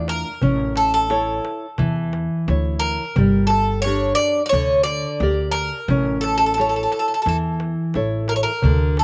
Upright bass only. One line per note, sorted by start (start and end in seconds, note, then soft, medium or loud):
0.00 0.22 E2 medium
0.42 1.38 A1 medium
1.79 2.27 E2 medium
2.48 2.96 D2 medium
3.16 4.12 G1 loud
4.53 5.01 D2 medium
5.20 5.69 D2 loud
5.88 6.85 A1 loud
7.26 7.74 E2 medium
7.95 8.43 A1 medium
8.63 9.04 D2 loud